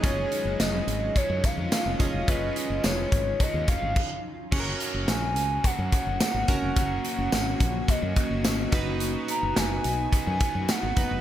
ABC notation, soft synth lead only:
X:1
M:4/4
L:1/8
Q:1/4=107
K:F#
V:1 name="Soft synth lead"
c2 d2 c e3 | d2 c2 d e2 z | z2 g2 f4 | f4 d3 z |
z a g2 g2 f2 |]